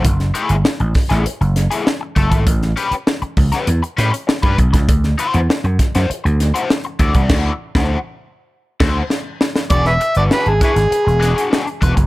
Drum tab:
CC |----------------|----------------|----------------|x---------x-----|
HH |xxxx-xoxxxxx--xx|xxxx-xoxxxxx-xxx|xxxx-xxxxxxx-xxx|----------------|
SD |-o--o-oo--o-o---|-o--o--o--o-o--o|-o--o-oo--o-o---|o--o------o-o-oo|
BD |o-----o-------oo|o-----o------ooo|o-----o-------oo|o--o------o-----|

CC |----------------|
HH |xxxx-xxxxxxx-xxx|
SD |-o--o-oo--o-o---|
BD |o-----o-------oo|